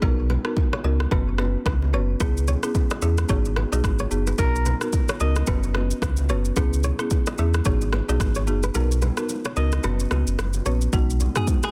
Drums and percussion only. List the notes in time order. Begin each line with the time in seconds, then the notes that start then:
0.02 kick, low conga
0.30 low conga
0.45 cross-stick
0.57 kick, high bongo
0.73 cross-stick, low bongo
1.00 cross-stick, high bongo
1.11 kick, low conga
1.38 cross-stick, high bongo, low bongo
1.66 kick, cross-stick, high bongo
1.82 low bongo
1.93 low bongo
2.20 kick, low conga, shaker
2.37 shaker
2.47 low conga, shaker
2.63 cross-stick, shaker
2.75 kick, high bongo, shaker
2.90 cross-stick, low bongo, shaker
3.02 shaker
3.18 cross-stick, high bongo, shaker
3.29 kick, low conga, shaker
3.45 shaker
3.56 cross-stick, high bongo, low bongo
3.73 shaker
3.84 kick, cross-stick, high bongo, shaker
3.99 low bongo, shaker
4.11 low bongo, shaker
4.27 shaker
4.38 kick, low conga, shaker
4.56 shaker
4.66 low conga, shaker
4.81 cross-stick, shaker
4.93 kick, high bongo, shaker
5.08 cross-stick, low bongo, shaker
5.20 shaker
5.36 cross-stick, high bongo, shaker
5.47 kick, low conga, shaker
5.63 shaker
5.75 cross-stick, high bongo, low bongo
5.91 shaker
6.02 kick, cross-stick, high bongo, shaker
6.17 low bongo, shaker
6.29 low bongo, shaker
6.45 shaker
6.56 kick, low conga, shaker
6.73 shaker
6.84 low conga, shaker
6.99 cross-stick, shaker
7.11 kick, high bongo, shaker
7.26 cross-stick, low bongo, shaker
7.38 shaker
7.54 cross-stick, high bongo, shaker
7.65 kick, low conga, shaker
7.81 shaker
7.93 cross-stick, high bongo, low bongo
8.09 shaker
8.20 kick, cross-stick, high bongo, shaker
8.35 low bongo, shaker
8.47 low bongo, shaker
8.63 shaker
8.75 low conga, shaker
8.92 shaker
9.02 low conga, shaker
9.17 cross-stick, shaker
9.29 high bongo, shaker
9.45 cross-stick, low bongo, shaker
9.56 shaker
9.72 cross-stick, high bongo, shaker
9.83 low conga, shaker
10.00 shaker
10.11 cross-stick, high bongo, low bongo, shaker
10.27 shaker
10.39 cross-stick, high bongo, shaker
10.53 low bongo, shaker
10.65 low bongo, shaker
10.81 shaker
10.93 kick, low conga, shaker
11.10 shaker
11.20 low conga, shaker
11.36 cross-stick, mid tom, shaker
11.47 kick, high bongo, shaker
11.63 cross-stick, low bongo, shaker